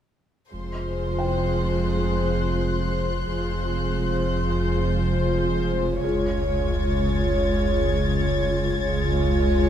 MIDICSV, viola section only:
0, 0, Header, 1, 2, 480
1, 0, Start_track
1, 0, Tempo, 689655
1, 360, Time_signature, 4, 2, 24, 8
1, 6746, End_track
2, 0, Start_track
2, 0, Title_t, "Viola section"
2, 0, Program_c, 0, 48
2, 358, Note_on_c, 0, 56, 27
2, 358, Note_on_c, 0, 65, 27
2, 2251, Note_off_c, 0, 56, 0
2, 2251, Note_off_c, 0, 65, 0
2, 2276, Note_on_c, 0, 56, 29
2, 2278, Note_on_c, 0, 65, 33
2, 4170, Note_off_c, 0, 56, 0
2, 4171, Note_off_c, 0, 65, 0
2, 4194, Note_on_c, 0, 65, 35
2, 4195, Note_on_c, 0, 56, 37
2, 6089, Note_off_c, 0, 56, 0
2, 6089, Note_off_c, 0, 65, 0
2, 6125, Note_on_c, 0, 65, 48
2, 6128, Note_on_c, 0, 56, 46
2, 6746, Note_off_c, 0, 56, 0
2, 6746, Note_off_c, 0, 65, 0
2, 6746, End_track
0, 0, End_of_file